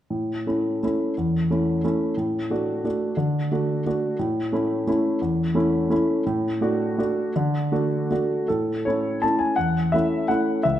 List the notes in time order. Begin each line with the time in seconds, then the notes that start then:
0.10 A2
0.47 A3 C#4 E4
0.83 A3 C#4 E4
1.17 E2
1.51 A3 C#4 E4
1.84 A3 C#4 E4
2.17 A2
2.50 A3 D4 F#4
2.85 A3 D4 F#4
3.17 D3
3.52 A3 D4 F#4
3.86 A3 D4 F#4
4.19 A2
4.53 A3 C#4 E4
4.87 A3 C#4 E4
5.21 E2
5.55 A3 C#4 E4
5.90 A3 C#4 E4
6.26 A2
6.61 A3 D4 F#4
6.98 A3 D4 F#4
7.36 D3
7.72 A3 D4 F#4
8.11 A3 D4 F#4
8.48 A2 A4
8.85 A3 C#4 E4 C#5
9.22 A3 C#4 E4 A5
9.39 G#5
9.56 E2 F#5
9.92 A3 C#4 E4 E5
10.28 A3 C#4 E4 F#5
10.63 C#2 E5